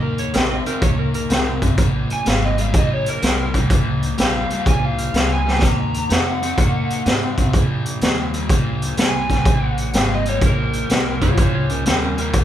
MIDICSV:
0, 0, Header, 1, 7, 480
1, 0, Start_track
1, 0, Key_signature, -5, "minor"
1, 0, Tempo, 480000
1, 1780, Time_signature, 4, 2, 24, 8
1, 12441, End_track
2, 0, Start_track
2, 0, Title_t, "Lead electric guitar"
2, 0, Program_c, 0, 29
2, 2126, Note_on_c, 0, 80, 87
2, 2269, Note_off_c, 0, 80, 0
2, 2290, Note_on_c, 0, 77, 69
2, 2431, Note_off_c, 0, 77, 0
2, 2450, Note_on_c, 0, 75, 72
2, 2591, Note_off_c, 0, 75, 0
2, 2611, Note_on_c, 0, 77, 75
2, 2751, Note_off_c, 0, 77, 0
2, 2776, Note_on_c, 0, 75, 86
2, 2933, Note_off_c, 0, 75, 0
2, 2933, Note_on_c, 0, 73, 85
2, 3072, Note_off_c, 0, 73, 0
2, 3089, Note_on_c, 0, 70, 84
2, 3541, Note_off_c, 0, 70, 0
2, 4218, Note_on_c, 0, 77, 83
2, 4665, Note_off_c, 0, 77, 0
2, 4689, Note_on_c, 0, 80, 83
2, 4850, Note_off_c, 0, 80, 0
2, 4850, Note_on_c, 0, 77, 83
2, 5301, Note_off_c, 0, 77, 0
2, 5325, Note_on_c, 0, 80, 77
2, 5623, Note_off_c, 0, 80, 0
2, 5638, Note_on_c, 0, 82, 75
2, 6094, Note_off_c, 0, 82, 0
2, 6118, Note_on_c, 0, 78, 80
2, 7507, Note_off_c, 0, 78, 0
2, 9004, Note_on_c, 0, 80, 82
2, 9644, Note_off_c, 0, 80, 0
2, 9644, Note_on_c, 0, 78, 82
2, 9922, Note_off_c, 0, 78, 0
2, 9966, Note_on_c, 0, 77, 65
2, 10107, Note_off_c, 0, 77, 0
2, 10136, Note_on_c, 0, 75, 70
2, 10286, Note_off_c, 0, 75, 0
2, 10286, Note_on_c, 0, 73, 88
2, 10427, Note_off_c, 0, 73, 0
2, 10453, Note_on_c, 0, 70, 90
2, 11367, Note_off_c, 0, 70, 0
2, 12441, End_track
3, 0, Start_track
3, 0, Title_t, "Electric slide guitar"
3, 0, Program_c, 1, 29
3, 25, Note_on_c, 1, 70, 72
3, 177, Note_off_c, 1, 70, 0
3, 192, Note_on_c, 1, 73, 71
3, 340, Note_off_c, 1, 73, 0
3, 346, Note_on_c, 1, 70, 90
3, 497, Note_off_c, 1, 70, 0
3, 507, Note_on_c, 1, 75, 87
3, 658, Note_off_c, 1, 75, 0
3, 669, Note_on_c, 1, 70, 93
3, 819, Note_off_c, 1, 70, 0
3, 828, Note_on_c, 1, 73, 73
3, 979, Note_off_c, 1, 73, 0
3, 991, Note_on_c, 1, 70, 71
3, 1141, Note_off_c, 1, 70, 0
3, 1151, Note_on_c, 1, 70, 86
3, 1611, Note_off_c, 1, 70, 0
3, 11226, Note_on_c, 1, 65, 82
3, 11230, Note_on_c, 1, 73, 89
3, 11374, Note_off_c, 1, 65, 0
3, 11379, Note_off_c, 1, 73, 0
3, 11386, Note_on_c, 1, 65, 81
3, 11391, Note_on_c, 1, 73, 85
3, 11531, Note_off_c, 1, 65, 0
3, 11540, Note_off_c, 1, 73, 0
3, 11543, Note_on_c, 1, 65, 64
3, 11550, Note_on_c, 1, 73, 78
3, 11689, Note_off_c, 1, 65, 0
3, 11699, Note_off_c, 1, 73, 0
3, 11706, Note_on_c, 1, 61, 58
3, 11715, Note_on_c, 1, 70, 63
3, 11851, Note_off_c, 1, 61, 0
3, 11859, Note_off_c, 1, 70, 0
3, 11866, Note_on_c, 1, 61, 71
3, 11871, Note_on_c, 1, 70, 86
3, 12011, Note_off_c, 1, 61, 0
3, 12016, Note_off_c, 1, 70, 0
3, 12023, Note_on_c, 1, 61, 72
3, 12028, Note_on_c, 1, 70, 77
3, 12170, Note_off_c, 1, 61, 0
3, 12178, Note_off_c, 1, 70, 0
3, 12190, Note_on_c, 1, 70, 84
3, 12441, Note_off_c, 1, 70, 0
3, 12441, End_track
4, 0, Start_track
4, 0, Title_t, "Overdriven electric guitar"
4, 0, Program_c, 2, 29
4, 0, Note_on_c, 2, 51, 76
4, 0, Note_on_c, 2, 58, 90
4, 308, Note_off_c, 2, 51, 0
4, 309, Note_off_c, 2, 58, 0
4, 336, Note_on_c, 2, 51, 77
4, 340, Note_on_c, 2, 60, 84
4, 626, Note_off_c, 2, 51, 0
4, 629, Note_off_c, 2, 60, 0
4, 662, Note_on_c, 2, 51, 74
4, 667, Note_on_c, 2, 60, 90
4, 804, Note_off_c, 2, 51, 0
4, 806, Note_off_c, 2, 60, 0
4, 819, Note_on_c, 2, 51, 79
4, 824, Note_on_c, 2, 58, 81
4, 1268, Note_off_c, 2, 51, 0
4, 1270, Note_off_c, 2, 58, 0
4, 1297, Note_on_c, 2, 51, 79
4, 1300, Note_on_c, 2, 60, 88
4, 1587, Note_off_c, 2, 51, 0
4, 1589, Note_off_c, 2, 60, 0
4, 1623, Note_on_c, 2, 51, 65
4, 1624, Note_on_c, 2, 60, 75
4, 1765, Note_off_c, 2, 51, 0
4, 1766, Note_off_c, 2, 60, 0
4, 1774, Note_on_c, 2, 46, 79
4, 1777, Note_on_c, 2, 53, 83
4, 2225, Note_off_c, 2, 46, 0
4, 2227, Note_off_c, 2, 53, 0
4, 2256, Note_on_c, 2, 46, 90
4, 2260, Note_on_c, 2, 55, 95
4, 2547, Note_off_c, 2, 46, 0
4, 2549, Note_off_c, 2, 55, 0
4, 2577, Note_on_c, 2, 46, 72
4, 2582, Note_on_c, 2, 55, 84
4, 2722, Note_off_c, 2, 46, 0
4, 2724, Note_off_c, 2, 55, 0
4, 2740, Note_on_c, 2, 46, 74
4, 2748, Note_on_c, 2, 53, 93
4, 3189, Note_off_c, 2, 46, 0
4, 3193, Note_off_c, 2, 53, 0
4, 3220, Note_on_c, 2, 46, 74
4, 3223, Note_on_c, 2, 55, 88
4, 3509, Note_off_c, 2, 46, 0
4, 3511, Note_off_c, 2, 55, 0
4, 3544, Note_on_c, 2, 46, 71
4, 3545, Note_on_c, 2, 55, 79
4, 3686, Note_off_c, 2, 46, 0
4, 3686, Note_off_c, 2, 55, 0
4, 3703, Note_on_c, 2, 46, 78
4, 3706, Note_on_c, 2, 53, 89
4, 4150, Note_off_c, 2, 46, 0
4, 4152, Note_off_c, 2, 53, 0
4, 4177, Note_on_c, 2, 46, 69
4, 4180, Note_on_c, 2, 55, 94
4, 4468, Note_off_c, 2, 46, 0
4, 4469, Note_off_c, 2, 55, 0
4, 4500, Note_on_c, 2, 46, 75
4, 4507, Note_on_c, 2, 55, 86
4, 4642, Note_off_c, 2, 46, 0
4, 4647, Note_off_c, 2, 55, 0
4, 4654, Note_on_c, 2, 46, 70
4, 4660, Note_on_c, 2, 53, 88
4, 5105, Note_off_c, 2, 46, 0
4, 5108, Note_off_c, 2, 53, 0
4, 5137, Note_on_c, 2, 46, 75
4, 5142, Note_on_c, 2, 55, 87
4, 5427, Note_off_c, 2, 46, 0
4, 5430, Note_off_c, 2, 55, 0
4, 5460, Note_on_c, 2, 46, 72
4, 5466, Note_on_c, 2, 55, 68
4, 5603, Note_off_c, 2, 46, 0
4, 5606, Note_off_c, 2, 55, 0
4, 5612, Note_on_c, 2, 51, 73
4, 5618, Note_on_c, 2, 58, 81
4, 6063, Note_off_c, 2, 51, 0
4, 6067, Note_off_c, 2, 58, 0
4, 6094, Note_on_c, 2, 51, 78
4, 6100, Note_on_c, 2, 60, 82
4, 6385, Note_off_c, 2, 51, 0
4, 6388, Note_off_c, 2, 60, 0
4, 6422, Note_on_c, 2, 51, 66
4, 6424, Note_on_c, 2, 60, 90
4, 6563, Note_off_c, 2, 51, 0
4, 6565, Note_off_c, 2, 60, 0
4, 6580, Note_on_c, 2, 51, 73
4, 6582, Note_on_c, 2, 58, 91
4, 7027, Note_off_c, 2, 51, 0
4, 7028, Note_off_c, 2, 58, 0
4, 7059, Note_on_c, 2, 51, 85
4, 7069, Note_on_c, 2, 60, 91
4, 7347, Note_off_c, 2, 51, 0
4, 7352, Note_off_c, 2, 60, 0
4, 7376, Note_on_c, 2, 51, 70
4, 7383, Note_on_c, 2, 60, 82
4, 7520, Note_off_c, 2, 51, 0
4, 7524, Note_off_c, 2, 60, 0
4, 7541, Note_on_c, 2, 46, 73
4, 7544, Note_on_c, 2, 53, 94
4, 7987, Note_off_c, 2, 46, 0
4, 7988, Note_off_c, 2, 53, 0
4, 8021, Note_on_c, 2, 46, 81
4, 8025, Note_on_c, 2, 55, 83
4, 8308, Note_off_c, 2, 46, 0
4, 8310, Note_off_c, 2, 55, 0
4, 8343, Note_on_c, 2, 46, 70
4, 8350, Note_on_c, 2, 55, 78
4, 8483, Note_off_c, 2, 46, 0
4, 8487, Note_off_c, 2, 55, 0
4, 8498, Note_on_c, 2, 46, 78
4, 8503, Note_on_c, 2, 53, 84
4, 8946, Note_off_c, 2, 46, 0
4, 8948, Note_off_c, 2, 53, 0
4, 8975, Note_on_c, 2, 46, 83
4, 8982, Note_on_c, 2, 55, 94
4, 9265, Note_off_c, 2, 46, 0
4, 9268, Note_off_c, 2, 55, 0
4, 9298, Note_on_c, 2, 46, 66
4, 9308, Note_on_c, 2, 55, 88
4, 9441, Note_off_c, 2, 46, 0
4, 9446, Note_off_c, 2, 55, 0
4, 9463, Note_on_c, 2, 46, 72
4, 9470, Note_on_c, 2, 53, 81
4, 9908, Note_off_c, 2, 46, 0
4, 9911, Note_off_c, 2, 53, 0
4, 9943, Note_on_c, 2, 46, 90
4, 9948, Note_on_c, 2, 55, 88
4, 10229, Note_off_c, 2, 46, 0
4, 10232, Note_off_c, 2, 55, 0
4, 10265, Note_on_c, 2, 46, 75
4, 10273, Note_on_c, 2, 55, 83
4, 10404, Note_off_c, 2, 46, 0
4, 10408, Note_off_c, 2, 55, 0
4, 10417, Note_on_c, 2, 46, 73
4, 10421, Note_on_c, 2, 53, 94
4, 10865, Note_off_c, 2, 46, 0
4, 10867, Note_off_c, 2, 53, 0
4, 10893, Note_on_c, 2, 46, 82
4, 10902, Note_on_c, 2, 55, 82
4, 11184, Note_off_c, 2, 46, 0
4, 11189, Note_off_c, 2, 55, 0
4, 11223, Note_on_c, 2, 46, 81
4, 11226, Note_on_c, 2, 55, 85
4, 11364, Note_off_c, 2, 46, 0
4, 11365, Note_off_c, 2, 55, 0
4, 11381, Note_on_c, 2, 46, 78
4, 11384, Note_on_c, 2, 53, 83
4, 11828, Note_off_c, 2, 46, 0
4, 11829, Note_off_c, 2, 53, 0
4, 11862, Note_on_c, 2, 46, 81
4, 11867, Note_on_c, 2, 55, 85
4, 12150, Note_off_c, 2, 46, 0
4, 12152, Note_off_c, 2, 55, 0
4, 12177, Note_on_c, 2, 46, 76
4, 12186, Note_on_c, 2, 55, 83
4, 12321, Note_off_c, 2, 46, 0
4, 12326, Note_off_c, 2, 55, 0
4, 12337, Note_on_c, 2, 46, 73
4, 12344, Note_on_c, 2, 53, 81
4, 12441, Note_off_c, 2, 46, 0
4, 12441, Note_off_c, 2, 53, 0
4, 12441, End_track
5, 0, Start_track
5, 0, Title_t, "Upright bass"
5, 0, Program_c, 3, 32
5, 0, Note_on_c, 3, 39, 83
5, 324, Note_off_c, 3, 39, 0
5, 340, Note_on_c, 3, 34, 90
5, 638, Note_off_c, 3, 34, 0
5, 818, Note_on_c, 3, 37, 84
5, 1285, Note_off_c, 3, 37, 0
5, 1304, Note_on_c, 3, 36, 84
5, 1768, Note_off_c, 3, 36, 0
5, 1782, Note_on_c, 3, 34, 89
5, 2080, Note_off_c, 3, 34, 0
5, 2261, Note_on_c, 3, 32, 85
5, 2726, Note_off_c, 3, 32, 0
5, 2743, Note_on_c, 3, 34, 83
5, 3207, Note_off_c, 3, 34, 0
5, 3228, Note_on_c, 3, 36, 83
5, 3690, Note_off_c, 3, 36, 0
5, 3702, Note_on_c, 3, 37, 87
5, 4167, Note_off_c, 3, 37, 0
5, 4183, Note_on_c, 3, 34, 90
5, 4480, Note_off_c, 3, 34, 0
5, 4662, Note_on_c, 3, 36, 80
5, 5126, Note_off_c, 3, 36, 0
5, 5137, Note_on_c, 3, 37, 75
5, 5603, Note_off_c, 3, 37, 0
5, 5621, Note_on_c, 3, 39, 89
5, 6086, Note_off_c, 3, 39, 0
5, 6103, Note_on_c, 3, 41, 93
5, 6566, Note_off_c, 3, 41, 0
5, 6579, Note_on_c, 3, 42, 81
5, 6877, Note_off_c, 3, 42, 0
5, 7059, Note_on_c, 3, 44, 85
5, 7524, Note_off_c, 3, 44, 0
5, 7537, Note_on_c, 3, 46, 86
5, 8002, Note_off_c, 3, 46, 0
5, 8015, Note_on_c, 3, 39, 94
5, 8482, Note_off_c, 3, 39, 0
5, 8496, Note_on_c, 3, 37, 82
5, 8962, Note_off_c, 3, 37, 0
5, 8980, Note_on_c, 3, 36, 82
5, 9444, Note_off_c, 3, 36, 0
5, 9455, Note_on_c, 3, 34, 80
5, 9921, Note_off_c, 3, 34, 0
5, 9941, Note_on_c, 3, 32, 85
5, 10404, Note_off_c, 3, 32, 0
5, 10415, Note_on_c, 3, 34, 78
5, 10882, Note_off_c, 3, 34, 0
5, 10900, Note_on_c, 3, 36, 90
5, 11364, Note_off_c, 3, 36, 0
5, 11375, Note_on_c, 3, 37, 80
5, 11842, Note_off_c, 3, 37, 0
5, 11864, Note_on_c, 3, 39, 90
5, 12327, Note_off_c, 3, 39, 0
5, 12337, Note_on_c, 3, 37, 79
5, 12441, Note_off_c, 3, 37, 0
5, 12441, End_track
6, 0, Start_track
6, 0, Title_t, "Muted upright bass strokes"
6, 663, Note_on_c, 9, 29, 39
6, 763, Note_off_c, 9, 29, 0
6, 2104, Note_on_c, 9, 29, 43
6, 2204, Note_off_c, 9, 29, 0
6, 4506, Note_on_c, 9, 29, 40
6, 4606, Note_off_c, 9, 29, 0
6, 6903, Note_on_c, 9, 29, 38
6, 7003, Note_off_c, 9, 29, 0
6, 12441, End_track
7, 0, Start_track
7, 0, Title_t, "Drums"
7, 181, Note_on_c, 9, 42, 57
7, 281, Note_off_c, 9, 42, 0
7, 336, Note_on_c, 9, 42, 80
7, 353, Note_on_c, 9, 38, 105
7, 436, Note_off_c, 9, 42, 0
7, 453, Note_off_c, 9, 38, 0
7, 661, Note_on_c, 9, 42, 57
7, 761, Note_off_c, 9, 42, 0
7, 819, Note_on_c, 9, 36, 111
7, 819, Note_on_c, 9, 42, 79
7, 919, Note_off_c, 9, 36, 0
7, 919, Note_off_c, 9, 42, 0
7, 1141, Note_on_c, 9, 42, 59
7, 1241, Note_off_c, 9, 42, 0
7, 1299, Note_on_c, 9, 42, 69
7, 1316, Note_on_c, 9, 38, 94
7, 1399, Note_off_c, 9, 42, 0
7, 1416, Note_off_c, 9, 38, 0
7, 1620, Note_on_c, 9, 36, 75
7, 1622, Note_on_c, 9, 42, 57
7, 1720, Note_off_c, 9, 36, 0
7, 1722, Note_off_c, 9, 42, 0
7, 1776, Note_on_c, 9, 42, 82
7, 1779, Note_on_c, 9, 36, 115
7, 1876, Note_off_c, 9, 42, 0
7, 1879, Note_off_c, 9, 36, 0
7, 2101, Note_on_c, 9, 42, 57
7, 2201, Note_off_c, 9, 42, 0
7, 2258, Note_on_c, 9, 42, 84
7, 2275, Note_on_c, 9, 38, 98
7, 2358, Note_off_c, 9, 42, 0
7, 2375, Note_off_c, 9, 38, 0
7, 2579, Note_on_c, 9, 42, 61
7, 2679, Note_off_c, 9, 42, 0
7, 2736, Note_on_c, 9, 42, 96
7, 2739, Note_on_c, 9, 36, 116
7, 2836, Note_off_c, 9, 42, 0
7, 2839, Note_off_c, 9, 36, 0
7, 3060, Note_on_c, 9, 42, 66
7, 3160, Note_off_c, 9, 42, 0
7, 3222, Note_on_c, 9, 42, 80
7, 3240, Note_on_c, 9, 38, 102
7, 3322, Note_off_c, 9, 42, 0
7, 3340, Note_off_c, 9, 38, 0
7, 3542, Note_on_c, 9, 36, 70
7, 3543, Note_on_c, 9, 42, 59
7, 3642, Note_off_c, 9, 36, 0
7, 3643, Note_off_c, 9, 42, 0
7, 3701, Note_on_c, 9, 36, 104
7, 3702, Note_on_c, 9, 42, 79
7, 3801, Note_off_c, 9, 36, 0
7, 3802, Note_off_c, 9, 42, 0
7, 4026, Note_on_c, 9, 42, 56
7, 4126, Note_off_c, 9, 42, 0
7, 4179, Note_on_c, 9, 42, 78
7, 4196, Note_on_c, 9, 38, 105
7, 4279, Note_off_c, 9, 42, 0
7, 4296, Note_off_c, 9, 38, 0
7, 4503, Note_on_c, 9, 42, 57
7, 4603, Note_off_c, 9, 42, 0
7, 4661, Note_on_c, 9, 36, 106
7, 4664, Note_on_c, 9, 42, 76
7, 4761, Note_off_c, 9, 36, 0
7, 4764, Note_off_c, 9, 42, 0
7, 4983, Note_on_c, 9, 42, 62
7, 5083, Note_off_c, 9, 42, 0
7, 5140, Note_on_c, 9, 42, 63
7, 5157, Note_on_c, 9, 38, 99
7, 5240, Note_off_c, 9, 42, 0
7, 5257, Note_off_c, 9, 38, 0
7, 5480, Note_on_c, 9, 38, 58
7, 5580, Note_off_c, 9, 38, 0
7, 5589, Note_on_c, 9, 38, 81
7, 5621, Note_on_c, 9, 36, 102
7, 5626, Note_on_c, 9, 42, 85
7, 5689, Note_off_c, 9, 38, 0
7, 5721, Note_off_c, 9, 36, 0
7, 5726, Note_off_c, 9, 42, 0
7, 5943, Note_on_c, 9, 42, 56
7, 6043, Note_off_c, 9, 42, 0
7, 6100, Note_on_c, 9, 42, 80
7, 6117, Note_on_c, 9, 38, 109
7, 6200, Note_off_c, 9, 42, 0
7, 6217, Note_off_c, 9, 38, 0
7, 6426, Note_on_c, 9, 42, 64
7, 6526, Note_off_c, 9, 42, 0
7, 6577, Note_on_c, 9, 36, 112
7, 6580, Note_on_c, 9, 42, 88
7, 6677, Note_off_c, 9, 36, 0
7, 6680, Note_off_c, 9, 42, 0
7, 6903, Note_on_c, 9, 42, 65
7, 7003, Note_off_c, 9, 42, 0
7, 7058, Note_on_c, 9, 42, 77
7, 7075, Note_on_c, 9, 38, 100
7, 7158, Note_off_c, 9, 42, 0
7, 7175, Note_off_c, 9, 38, 0
7, 7377, Note_on_c, 9, 36, 75
7, 7378, Note_on_c, 9, 42, 64
7, 7477, Note_off_c, 9, 36, 0
7, 7478, Note_off_c, 9, 42, 0
7, 7535, Note_on_c, 9, 36, 104
7, 7539, Note_on_c, 9, 42, 87
7, 7635, Note_off_c, 9, 36, 0
7, 7639, Note_off_c, 9, 42, 0
7, 7856, Note_on_c, 9, 42, 62
7, 7956, Note_off_c, 9, 42, 0
7, 8013, Note_on_c, 9, 42, 77
7, 8030, Note_on_c, 9, 38, 100
7, 8113, Note_off_c, 9, 42, 0
7, 8130, Note_off_c, 9, 38, 0
7, 8336, Note_on_c, 9, 42, 55
7, 8436, Note_off_c, 9, 42, 0
7, 8495, Note_on_c, 9, 36, 117
7, 8497, Note_on_c, 9, 42, 90
7, 8595, Note_off_c, 9, 36, 0
7, 8597, Note_off_c, 9, 42, 0
7, 8820, Note_on_c, 9, 42, 62
7, 8920, Note_off_c, 9, 42, 0
7, 8972, Note_on_c, 9, 42, 81
7, 8989, Note_on_c, 9, 38, 106
7, 9072, Note_off_c, 9, 42, 0
7, 9089, Note_off_c, 9, 38, 0
7, 9296, Note_on_c, 9, 36, 71
7, 9300, Note_on_c, 9, 42, 51
7, 9317, Note_on_c, 9, 38, 29
7, 9396, Note_off_c, 9, 36, 0
7, 9400, Note_off_c, 9, 42, 0
7, 9417, Note_off_c, 9, 38, 0
7, 9455, Note_on_c, 9, 36, 115
7, 9456, Note_on_c, 9, 42, 79
7, 9555, Note_off_c, 9, 36, 0
7, 9556, Note_off_c, 9, 42, 0
7, 9776, Note_on_c, 9, 42, 58
7, 9876, Note_off_c, 9, 42, 0
7, 9934, Note_on_c, 9, 42, 77
7, 9951, Note_on_c, 9, 38, 97
7, 10034, Note_off_c, 9, 42, 0
7, 10051, Note_off_c, 9, 38, 0
7, 10255, Note_on_c, 9, 42, 57
7, 10355, Note_off_c, 9, 42, 0
7, 10415, Note_on_c, 9, 36, 102
7, 10415, Note_on_c, 9, 42, 83
7, 10515, Note_off_c, 9, 36, 0
7, 10515, Note_off_c, 9, 42, 0
7, 10733, Note_on_c, 9, 42, 59
7, 10833, Note_off_c, 9, 42, 0
7, 10896, Note_on_c, 9, 42, 76
7, 10912, Note_on_c, 9, 38, 101
7, 10996, Note_off_c, 9, 42, 0
7, 11012, Note_off_c, 9, 38, 0
7, 11216, Note_on_c, 9, 36, 69
7, 11217, Note_on_c, 9, 42, 61
7, 11316, Note_off_c, 9, 36, 0
7, 11317, Note_off_c, 9, 42, 0
7, 11374, Note_on_c, 9, 42, 88
7, 11376, Note_on_c, 9, 36, 110
7, 11474, Note_off_c, 9, 42, 0
7, 11476, Note_off_c, 9, 36, 0
7, 11695, Note_on_c, 9, 42, 62
7, 11795, Note_off_c, 9, 42, 0
7, 11856, Note_on_c, 9, 42, 85
7, 11873, Note_on_c, 9, 38, 96
7, 11956, Note_off_c, 9, 42, 0
7, 11973, Note_off_c, 9, 38, 0
7, 12178, Note_on_c, 9, 42, 62
7, 12278, Note_off_c, 9, 42, 0
7, 12333, Note_on_c, 9, 42, 90
7, 12336, Note_on_c, 9, 36, 102
7, 12433, Note_off_c, 9, 42, 0
7, 12436, Note_off_c, 9, 36, 0
7, 12441, End_track
0, 0, End_of_file